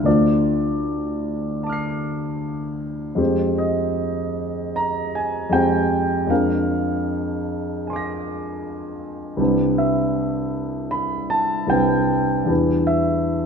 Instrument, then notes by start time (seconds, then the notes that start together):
grand piano
0.03 D2 A3 D4 F4 C5 D5
1.63 A5 D6
1.69 F6 C7
3.15 F2 G#3 C4 G4 C5
3.58 D#5
4.76 A#5
5.15 G#5
5.50 F2 G#3 C4 G4 C5 G5
6.27 F2 G#3 C4 D4 A#4 F5
7.87 G#5 C6
7.93 D6 A#6
9.37 C2 G3 C4 D4 B4
9.78 E5
10.91 B5
11.30 A5
11.67 C2 G3 C4 D4 B4 G5
12.45 E2 G3 D4 E4 B4
12.87 E5